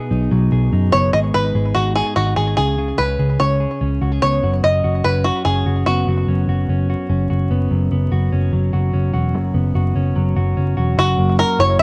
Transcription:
Already playing: B2 B3 D#4 G#4 B4
0.11 B1 D#4
0.31 B1 F#3
0.52 B1 G#4
0.72 F#2 D#4
0.92 F#1 B3 C#5
1.13 G#1 G#2 G#4 D#5
1.34 G#1 D#4 B4
1.55 G#1 G#4
1.75 G#1 D#4 F#4
1.96 F#4 G#4
2.06 G#4
2.16 G#1 D#4 F#4
2.36 G#1 F#4 G#4
2.47 G#4
2.57 C#2 C#3 G#4
2.78 C#3 G#4
2.98 C#2 C#4 B4
3.19 C#2 G#4
3.40 C#2 C#4 C#5
3.60 G#4
3.81 C#2 C#4
4.02 C#2 F#4
4.12 G#4
4.22 C#2 B3 C#5
4.43 F#1 F#2 F#4
4.63 F#1 C#4 D#5
4.84 F#1 F#4
5.04 F#1 C#4 B4
5.24 F#4
5.45 F#1 C#4 G#4
5.66 F#1 F#4
5.86 F#1 B3 F#4
6.07 F#1 F#2 F#4
6.27 F#1 C#4
6.47 F#1 F#4
6.68 F#1 C#4
6.90 F#4
7.09 F#1 C#4
7.30 F#1 F#4
7.50 F#1 B3
7.71 F#1 F#2
7.91 F#1 B3
8.12 F#1 F#4
8.32 F#1 C#4
8.53 F#1 F#3
8.73 F#1 F#4
8.93 F#1 C#4
9.14 E1 F#4
9.34 F#1 F#2
9.54 F#1 B3
9.75 F#1 F#4
9.95 F#1 C#4
10.16 F#1 F#3
10.36 F#1 F#4
10.57 F#1 C#4
10.77 E1 F#4
10.97 F#1 F#2 F#4
11.18 F#1 A#3
11.39 F#4 A#4
11.59 F#1 E4 C#5
11.79 F#1 E3 E5

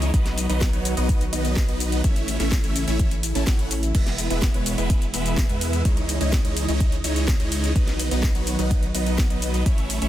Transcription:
Already playing: C#2 C#3 G#3 D#4 E4 C#5 D#5
0.02 closed hi-hat, shaker
0.14 B1 D#3 F#3 B3 F#4 B4, kick, closed hi-hat, shaker
0.26 snare, closed hi-hat, shaker
0.38 open hi-hat, shaker
0.49 B1 F#3 B3 D#4 B4 D#5, closed hi-hat, shaker
0.61 kick, snare, closed hi-hat, shaker
0.73 B1 F#3 B3 D#4 B4 C#5, closed hi-hat, shaker
0.85 open hi-hat, shaker
0.97 B1 F#3 B3 D#4 B4 D#5, closed hi-hat, shaker
1.09 kick, closed hi-hat, shaker
1.21 closed hi-hat, shaker
1.33 B1 F#3 B3 D#4 B4 D#5, open hi-hat, shaker
1.45 closed hi-hat, shaker
1.56 kick, snare, open hi-hat, shaker
1.68 B1 F#3 B3 D#4 B4 D#5, closed hi-hat, shaker
1.80 open hi-hat, shaker
1.92 closed hi-hat, shaker
2.04 A1 C#3 E3 A3 C#4 E4 C#5, kick, closed hi-hat, shaker
2.16 closed hi-hat, shaker
2.28 open hi-hat, shaker
2.40 A1 A3 C#4 E4 C#5 E5, snare, closed hi-hat, shaker
2.52 kick, snare, closed hi-hat, shaker
2.64 A1 A3 C#4 E4 C#5 E5, closed hi-hat, shaker
2.76 open hi-hat, shaker
2.88 A1 A3 C#4 E4 C#5 E5, closed hi-hat, shaker
2.99 kick, closed hi-hat, shaker
3.11 closed hi-hat, shaker
3.23 open hi-hat, shaker
3.35 A1 A3 C#4 E4 C#5 A5, closed hi-hat, shaker
3.47 A1 F#5, kick, snare, closed hi-hat, shaker
3.59 closed hi-hat, shaker
3.71 open hi-hat, shaker
3.83 closed hi-hat, shaker
3.95 E1 B2 E3 G#3 B3 E4 B4 E5, kick, closed hi-hat, ride, crash, shaker
4.06 snare, closed hi-hat, shaker
4.18 open hi-hat, ride, shaker
4.30 E1 G#3 B3 E4 B4 E5, closed hi-hat, shaker
4.42 kick, snare, closed hi-hat, ride, shaker
4.54 E1 G#3 B3 E4 B4 C#5, closed hi-hat, shaker
4.66 open hi-hat, ride, shaker
4.78 E1 G#3 B3 E4 B4 E5, closed hi-hat, shaker
4.90 kick, closed hi-hat, ride, shaker
5.02 closed hi-hat, shaker
5.14 E1 G#3 B3 E4 B4 E5, open hi-hat, ride, shaker
5.26 closed hi-hat, shaker
5.37 kick, snare, open hi-hat, ride, shaker
5.49 E2 G#3 B3 E4 B4 E5, closed hi-hat, shaker
5.61 open hi-hat, ride, shaker
5.73 closed hi-hat, shaker
5.85 C#2 C#3 G#3 D#4 E4 C#5 D#5, kick, closed hi-hat, ride, shaker
5.97 closed hi-hat, shaker
6.09 open hi-hat, ride, shaker
6.21 C#2 G#3 D#4 E4 C#5 D#5, closed hi-hat, shaker
6.33 kick, snare, closed hi-hat, ride, shaker
6.45 C#2 G#3 D#4 E4 C#5 D#5, closed hi-hat, shaker
6.57 open hi-hat, ride, shaker
6.68 C#2 G#3 D#4 E4 C#5 D#5, closed hi-hat, shaker
6.80 kick, closed hi-hat, ride, shaker
6.92 closed hi-hat, shaker
7.04 C#2 G#3 D#4 E4 C#5 D#5, open hi-hat, ride, shaker
7.16 closed hi-hat, shaker
7.28 kick, snare, closed hi-hat, ride, shaker
7.40 C#2 G#3 D#4 E4 C#5 D#5, closed hi-hat, shaker
7.52 open hi-hat, ride, shaker
7.64 closed hi-hat, shaker
7.75 B1 D#3 F#3 B3 F#4, kick, closed hi-hat, ride, shaker
7.87 snare, closed hi-hat, shaker
8.00 open hi-hat, ride, shaker
8.11 B1 F#3 B3 D#4 B4 D#5, closed hi-hat, shaker
8.23 kick, snare, closed hi-hat, ride, shaker
8.35 B1 F#3 B3 D#4 B4 C#5, closed hi-hat, shaker
8.47 open hi-hat, ride, shaker
8.59 B1 F#3 B3 D#4 B4 D#5, closed hi-hat, shaker
8.71 kick, closed hi-hat, ride, shaker
8.83 closed hi-hat, shaker
8.95 B1 F#3 B3 D#4 B4 D#5, open hi-hat, ride, shaker
9.06 closed hi-hat, shaker
9.18 kick, snare, open hi-hat, ride, shaker
9.30 B1 F#3 B3 D#4 B4 D#5, closed hi-hat, shaker
9.42 open hi-hat, ride, shaker
9.54 closed hi-hat, shaker
9.66 A1 C#3 E3 A3 C#4 E4 C#5 E5, kick, closed hi-hat, ride, shaker
9.78 closed hi-hat, shaker
9.90 open hi-hat, ride, shaker
10.02 A1 A3 C#4 E4 C#5 E5, closed hi-hat, shaker

